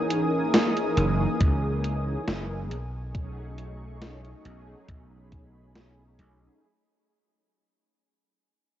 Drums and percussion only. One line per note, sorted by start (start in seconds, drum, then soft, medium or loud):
0.10 closed hi-hat medium
0.54 snare loud
0.54 closed hi-hat medium
0.77 closed hi-hat soft
0.97 closed hi-hat medium
1.41 kick loud
1.41 closed hi-hat medium
1.84 closed hi-hat medium
2.28 snare loud
2.28 closed hi-hat medium
2.71 closed hi-hat medium
3.15 kick loud
3.15 closed hi-hat medium
3.58 closed hi-hat medium
4.02 snare loud
4.02 closed hi-hat medium
4.25 closed hi-hat soft
4.45 closed hi-hat medium
4.88 kick loud
4.88 closed hi-hat medium
5.32 kick loud
5.32 closed hi-hat medium
5.75 snare loud
5.75 closed hi-hat medium
6.19 closed hi-hat medium